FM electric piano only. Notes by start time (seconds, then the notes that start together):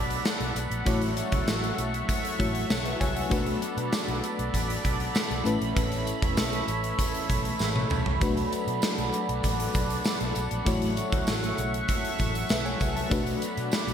Already playing: A3 D4 F#4 B4
0.85 A3 E4 F#4 C#5
2.39 A3 E4 F#4 C#5
2.85 B4 E5
3.00 C#5 G#5
3.16 C#5 F#5
3.29 A3 D4 F#4 B4
5.44 A3 C#4 E4 B4
8.20 A3 D4 F#4 B4
10.65 A3 E4 F#4 C#5
12.50 B4 E5
12.65 C#5 G#5
12.96 E5 A5
13.10 A3 D4 F#4 B4